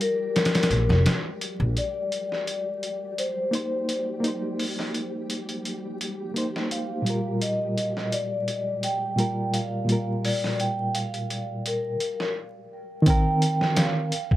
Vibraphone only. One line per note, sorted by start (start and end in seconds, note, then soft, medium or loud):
0.02 1.03 A#4 loud
1.78 3.23 D5 medium
3.19 4.20 C5 medium
6.72 7.38 F5 medium
7.42 8.15 D#5 medium
8.13 8.85 D5 medium
8.84 9.56 G5 loud
9.54 10.26 F5 medium
10.25 10.57 D5 medium
10.61 10.96 G5 medium
10.95 11.61 F5 medium
11.67 12.33 A#4 medium
13.07 13.79 G5 medium
13.77 14.37 F5 medium